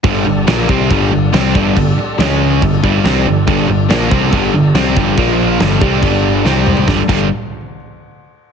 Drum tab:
CC |x---x---x---x---|x---x---x---x---|x---x---x---x---|x---x---x-------|
SD |----o-------o---|----o-------o---|----o-------o---|----o-------o---|
T2 |----------------|----------------|----------------|--------------o-|
FT |----------------|----------------|----------------|---------------o|
BD |o-----o-o-----o-|o-------o-o-----|o-----o-o-----o-|o-----o-o-------|

CC |--x-------------|
SD |o---------------|
T2 |----------------|
FT |----------------|
BD |o-o-------------|